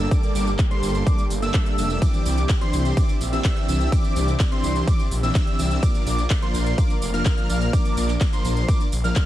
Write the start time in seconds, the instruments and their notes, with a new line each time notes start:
Already playing: analog synth pad G3 A#3 G4 A4
0.11 supersaw synth G3 A#3 D4 D5, analog synth lead D6, kick, closed hi-hat, tambourine
0.23 closed hi-hat, tambourine
0.35 detuned saw bass G1, supersaw synth G3 A#3 D4 A4 D5, analog synth lead D6, open hi-hat, tambourine
0.47 closed hi-hat, tambourine
0.59 kick, clap, closed hi-hat, tambourine
0.71 supersaw synth G3 A#3 D4 A4 C5, analog synth lead C6, closed hi-hat
0.83 detuned saw bass G1, open hi-hat, tambourine
0.95 closed hi-hat, tambourine
1.07 supersaw synth G3 A#3 D4 A4 D5, analog synth lead D6, kick, closed hi-hat, tambourine
1.19 closed hi-hat, tambourine
1.30 detuned saw bass G1, open hi-hat, tambourine
1.42 supersaw synth G3 A#3 D4 A4 E5, analog synth lead E6, closed hi-hat, tambourine
1.54 kick, clap, closed hi-hat, tambourine
1.66 closed hi-hat
1.78 detuned saw bass F1, supersaw synth G3 A#3 D4 A4 E5, analog synth lead E6, open hi-hat, tambourine
1.90 closed hi-hat, tambourine
2.02 supersaw synth E3 C4 D4 G4 D5, analog synth pad C4 D5 E5, analog synth lead D6, kick, closed hi-hat, ride, tambourine
2.14 closed hi-hat, tambourine
2.26 detuned saw bass C2, supersaw synth E3 C4 D4 G4 D5, analog synth lead D6, open hi-hat, tambourine
2.38 closed hi-hat, tambourine
2.49 kick, clap, closed hi-hat, ride, tambourine
2.61 supersaw synth E3 C4 D4 G4 C5, analog synth lead C6, closed hi-hat
2.73 detuned saw bass C2, open hi-hat, tambourine
2.85 closed hi-hat, tambourine
2.97 supersaw synth E3 C4 D4 G4 D5, analog synth lead D6, kick, closed hi-hat, ride, tambourine
3.09 closed hi-hat, tambourine
3.21 detuned saw bass A#1, open hi-hat, tambourine
3.33 supersaw synth E3 C4 D4 G4 E5, analog synth lead E6, closed hi-hat, tambourine
3.45 kick, clap, closed hi-hat, ride, tambourine
3.57 closed hi-hat
3.68 detuned saw bass C2, supersaw synth E3 C4 D4 G4 E5, analog synth lead E6, open hi-hat, tambourine
3.80 closed hi-hat, tambourine
3.92 supersaw synth E3 D4 G4 D5, analog synth lead D6, kick, closed hi-hat, ride, tambourine
4.04 closed hi-hat, tambourine
4.16 detuned saw bass C2, supersaw synth E3 C4 D4 G4 D5, analog synth lead D6, open hi-hat, tambourine
4.28 closed hi-hat, tambourine
4.40 kick, clap, closed hi-hat, ride, tambourine
4.52 supersaw synth E3 C4 D4 G4 C5, analog synth lead C6, closed hi-hat
4.64 detuned saw bass C2, open hi-hat, tambourine
4.76 closed hi-hat, tambourine
4.88 supersaw synth E3 C4 D4 G4 D5, analog synth lead D6, kick, closed hi-hat, ride, tambourine
4.99 closed hi-hat, tambourine
5.11 detuned saw bass A#1, open hi-hat, tambourine
5.23 supersaw synth E3 C4 D4 G4 E5, analog synth lead E6, closed hi-hat, tambourine
5.35 kick, clap, closed hi-hat, ride, tambourine
5.47 closed hi-hat
5.59 detuned saw bass C2, supersaw synth E3 C4 D4 G4 E5, analog synth lead E6, open hi-hat, tambourine
5.71 closed hi-hat, tambourine
5.83 supersaw synth F3 A#3 D4 A#4 D5, analog synth pad A#3 A#4 D5 F5, analog synth lead D6, kick, closed hi-hat, ride, tambourine
5.95 closed hi-hat, tambourine
6.07 detuned saw bass A#1, supersaw synth F3 A#3 D4 A#4 D5, analog synth lead D6, open hi-hat, tambourine
6.19 closed hi-hat, tambourine
6.30 kick, clap, closed hi-hat, ride, tambourine
6.42 supersaw synth F3 A#3 D4 A#4 C5, analog synth lead C6, closed hi-hat
6.54 detuned saw bass A#1, open hi-hat, tambourine
6.66 closed hi-hat, tambourine
6.78 supersaw synth F3 A#3 D4 A#4 D5, analog synth lead D6, kick, closed hi-hat, ride, tambourine
6.90 closed hi-hat, tambourine
7.02 detuned saw bass F1, open hi-hat, tambourine
7.14 supersaw synth F3 A#3 D4 A#4 F5, analog synth lead F6, closed hi-hat, tambourine
7.25 kick, clap, closed hi-hat, ride, tambourine
7.38 closed hi-hat
7.49 detuned saw bass A#1, supersaw synth F3 A#3 D4 A#4 F5, analog synth lead F6, open hi-hat, tambourine
7.61 closed hi-hat, tambourine
7.73 supersaw synth F3 A#3 D4 A#4 D5, analog synth lead D6, kick, closed hi-hat, ride, tambourine
7.85 closed hi-hat, tambourine
7.97 detuned saw bass A#1, supersaw synth F3 A#3 D4 A#4 D5, analog synth lead D6, open hi-hat, tambourine
8.09 clap, closed hi-hat, tambourine
8.21 kick, clap, closed hi-hat, ride, tambourine
8.33 supersaw synth F3 A#3 D4 A#4 C5, analog synth lead C6, closed hi-hat, tambourine
8.45 detuned saw bass A#1, open hi-hat, tambourine
8.57 closed hi-hat, tambourine
8.68 supersaw synth F3 A#3 D4 A#4 D5, analog synth lead D6, kick, closed hi-hat, ride, tambourine
8.80 closed hi-hat, tambourine
8.92 detuned saw bass A#1, open hi-hat, tambourine
9.04 supersaw synth F3 A#3 D4 A#4 F5, analog synth lead F6, closed hi-hat, tambourine
9.16 kick, clap, closed hi-hat, ride, tambourine